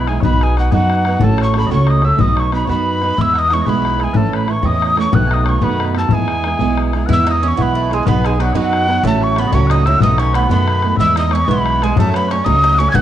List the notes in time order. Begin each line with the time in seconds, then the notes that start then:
Already playing: B1 E4
0.07 E3 G#3 B3 G#4 G#5, bodhran
0.12 E4
0.21 B3 D#4 B4 C#5 B5, bodhran
0.25 B1 F#4 B4
0.32 bodhran
0.41 G#4 G#5, bodhran
0.56 B3 D#4 F#4 B4 F#5, bodhran
0.71 F#2 B3 D#4 F#4 G#4 B4 F#5, bodhran
0.90 bodhran
1.05 B3 D#4 F#4 B4, bodhran
1.20 A1 A3 C#4 F#4 A4, bodhran
1.24 A4 A5
1.29 bodhran
1.38 C#5, bodhran
1.43 C#6
1.54 A3 C#4 F#4 A4, bodhran
1.59 B5
1.67 C#2 A3 C#5 D#5, bodhran
1.71 C#4 F#4 A4 C#6
1.87 D#5 D#6, bodhran
2.02 A3 C#4 F#4 A4 E5 E6, bodhran
2.19 B1 B3 D#4 F#4 B4 D#5 D#6, bodhran
2.28 bodhran
2.36 C#5 C#6, bodhran
2.52 B3 D#4 F#4 B4 B5, bodhran
2.65 F#2 B3 D#4 C#5, bodhran
2.69 F#4 B4 B5
3.01 B3 D#4 F#4 B4, bodhran
3.17 E2 E3 G#3 B3 E4 E5, bodhran
3.21 E6
3.27 bodhran
3.33 F#5, bodhran
3.37 D#5 D#6
3.48 E3 F#5, bodhran
3.52 G#3 B3 E4 C#5 C#6
3.62 D#5
3.66 B1 E3 G#3 B3 E4 B4 B5, bodhran
3.85 bodhran
3.99 E3 G#3 B3 E4 G#4, bodhran
4.04 G#5
4.13 A1 A2 E3 A3 C#4 E4 A4 B4 A5, bodhran
4.24 bodhran
4.33 B4 B5, bodhran
4.47 E3 A3 C#4 E4 C#5 C#6, bodhran
4.63 E2 A2 E3 A3 C#4 E4 D#5, bodhran
4.67 D#6
4.82 bodhran
4.96 E3 A3 C#4 E4 C#5, bodhran
5.01 C#6
5.12 B1 B2 D#3 A3 B3 F#4 F#5 F#6, bodhran
5.22 bodhran
5.28 D#5 G#5, bodhran
5.34 D#6
5.45 D#3 A3 B3 F#4 C#5, bodhran
5.49 C#6
5.60 F#2 B2 D#3 A3 B3 F#4 B4 B5, bodhran
5.80 bodhran
5.95 D#3 A3 B3 F#4 A4 A5, bodhran
6.09 E2 E3 G#3 B3 E4 G#4, bodhran
6.14 G#5
6.19 bodhran
6.28 bodhran
6.44 E3 G#3 B3 E4, bodhran
6.59 B1 E3 G#3 B3 E4, bodhran
6.77 bodhran
6.93 E3 G#3 B3 E4, bodhran
7.06 E2 E3 G#3 B3 E4 E5 F#5, bodhran
7.13 E6
7.19 bodhran
7.24 D#4 D#5 F#5, bodhran
7.31 D#6
7.41 E3 G#3 B3 C#4 E4 C#5
7.48 C#6
7.55 B1 E3 G#3 B3 E4, bodhran
7.61 B4 B5
7.75 A3
7.89 E3 G#3 B3 E4 C#5, bodhran
7.93 G#4 G#5
8.05 B1 B3 D#4 F#4 B4 C#5 B5, bodhran
8.16 bodhran
8.25 G#3 G#4 G#5, bodhran
8.38 F#3 B3 D#4 F#4 B4 F#5, bodhran
8.53 F#2 F#3 B3 D#4 F#4 G#4 B4, bodhran
8.60 F#5
8.73 bodhran
8.88 B3 D#4 F#4 B4, bodhran
9.03 A1 A2 F#3 A3 C#4 F#4 A4 A5, bodhran
9.13 bodhran
9.22 C#5 C#6
9.36 F#3 A3 B3 C#4 B4 B5, bodhran
9.40 F#4
9.47 D#5
9.52 C#2 A2 F#3 A3 C#4 F#4 C#5 C#6, bodhran
9.67 D#4 D#5 F#5 D#6, bodhran
9.86 F#3 A3 C#4 E4 F#4 E6, bodhran
9.97 B2 D#3 F#5, bodhran
10.01 B1 A3 B3 D#4 F#4 D#5 D#6
10.09 bodhran
10.18 C#4 C#5 C#6, bodhran
10.33 D#3 A3 B3 B4 B5, bodhran
10.38 F#4
10.44 B4 C#5
10.49 F#2 B2 D#3 A3 B3 F#4 B5, bodhran
10.68 bodhran
10.83 D#3 A3 B3 F#4, bodhran
10.97 E2 E3 G#3 B3 E4 E5 E6, bodhran
11.01 E4
11.08 bodhran
11.16 D#4 D#5 D#6, bodhran
11.31 E3 G#3 B3 E4 C#5 C#6, bodhran
11.35 C#4
11.45 B1 E3 G#3 B3 E4 B4 D#5 B5, bodhran
11.51 B3
11.66 bodhran
11.81 E3 G#3 B3 E4 G#4 G#5, bodhran
11.96 F#2 F#3 A3 C#4 F#4 A4 A5, bodhran
12.06 C#5, bodhran
12.14 B3 B4 B5, bodhran
12.29 F#3 A3 C#4 C#5 C#6, bodhran
12.33 F#4
12.45 C#2 F#3 A3 C#4 D#4 F#4 D#5 D#6, bodhran
12.64 D#4, bodhran
12.74 C#5 F#5, bodhran
12.79 F#3 A3 C#4 F#4 C#6
12.89 G#5 G#6
12.93 B1 B2 D#3 A3 B3 F#4 F#5 F#6, bodhran